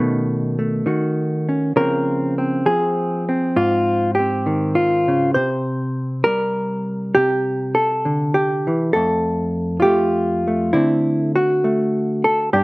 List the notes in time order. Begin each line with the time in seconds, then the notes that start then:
Already playing: B2 D#3 A3 C#4
0.59 A3
0.86 D#3 F#4
1.49 C#4
1.76 C#3 F3 A#3 C4 A#4
2.38 C4
2.66 F3 G#4
3.29 C4
3.56 G#2 F4
4.15 G4
4.19 C4
4.46 D#3
4.75 F4
5.08 C#3
5.34 C3 C5
6.24 G3 A#4
7.15 C3 G4
7.75 A4
8.05 D3
8.34 G4
8.67 E3
8.93 F2 A3 A4
9.80 F4 G4
9.85 A3
10.47 A3
10.73 D3 A3 C4 E4
11.36 F#4
11.64 A3
12.24 A4
12.53 G2 G3 D4 G4